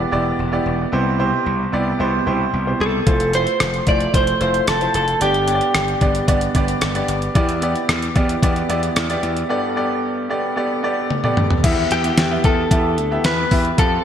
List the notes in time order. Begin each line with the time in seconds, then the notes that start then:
Already playing: E3 B3 E4 G4 D5
0.11 E1 B3 E4 G4 D5
0.39 E1
0.52 B3 E4 G4 D5
0.66 E1
0.92 C2 C3 B3 E4 G4 C5
1.18 B2 E4 G4 C5
1.46 C2
1.72 C2 B3 E4 G4 D5
1.99 C2 B3 E4 G4 C5
2.26 C2 B2 E4 G4 C5
2.53 C2
2.66 B2 E4 G4 C5
2.80 C2 A4
3.06 F1 A3 E4 F4 C5, kick, closed hi-hat
3.20 closed hi-hat
3.33 A3 E4 F4 B4 C5, closed hi-hat
3.40 C5
3.47 closed hi-hat
3.60 F1, cross-stick, closed hi-hat
3.74 closed hi-hat
3.86 F1 A3 E4 F4 C5 D5, kick, closed hi-hat
4.00 closed hi-hat
4.13 F1 A3 E4 F4 C5, kick, closed hi-hat
4.27 closed hi-hat
4.40 F1 A3 E4 F4 C5, closed hi-hat
4.54 closed hi-hat
4.67 F1 A4, cross-stick, closed hi-hat
4.80 A3 E4 F4 C5, closed hi-hat
4.94 F1 A4, closed hi-hat
5.08 closed hi-hat
5.20 G1 G2 B3 D4 G4 D5, closed hi-hat
5.34 closed hi-hat
5.47 B3 D4 G4 C#5, closed hi-hat
5.55 D5
5.61 closed hi-hat
5.75 G1, cross-stick, closed hi-hat
5.88 closed hi-hat
6.01 G1 B3 D4 G4 D5, kick, closed hi-hat
6.15 closed hi-hat
6.27 G1 B3 D4 G4 D5, kick, closed hi-hat
6.41 closed hi-hat
6.54 G1 B3 D4 G4 D5, kick, closed hi-hat
6.68 closed hi-hat
6.81 G1, cross-stick, closed hi-hat
6.95 B3 D4 G4 D5, closed hi-hat
7.08 G1, closed hi-hat
7.22 closed hi-hat
7.35 E2 E3 B3 E4 G4 D5, kick, closed hi-hat
7.49 closed hi-hat
7.61 B3 E4 G4 D5, closed hi-hat
7.76 closed hi-hat
7.89 E2, cross-stick, closed hi-hat
8.02 closed hi-hat
8.15 E2 B3 E4 G4 D5, kick, closed hi-hat
8.29 closed hi-hat
8.42 E2 B3 E4 G4 D5, kick, closed hi-hat
8.56 closed hi-hat
8.69 E2 B3 E4 G4 D5, closed hi-hat
8.83 closed hi-hat
8.96 E2, cross-stick, closed hi-hat
9.09 B3 E4 G4 D5, closed hi-hat
9.23 E2, closed hi-hat
9.37 closed hi-hat
9.49 G2 B3 G4 A4 D5
9.76 B3 G4 A4 D5
10.29 B3 G4 A4 D5
10.56 B3 G4 A4 D5
10.83 B3 G4 A4 D5
11.10 high tom
11.23 B3 G4 A4 D5, mid tom
11.37 mid tom
11.50 floor tom
11.63 E2 E3 B3 E4 G4 E5, kick, closed hi-hat, crash
11.91 E2 G4, closed hi-hat
12.03 B3 E4 G4 E5, closed hi-hat
12.17 E2, snare, closed hi-hat
12.31 B3 E4 G4 E5
12.44 E2 A4, kick, closed hi-hat
12.70 E2 B3 E4 G4 E5, kick, closed hi-hat
12.98 D2, closed hi-hat
13.11 B3 E4 G4 E5
13.24 E2 B4, snare, closed hi-hat
13.51 E2 B3 E4 G4 E5, kick, open hi-hat
13.65 closed hi-hat
13.77 F2 C4 G4 A4 F5, kick, closed hi-hat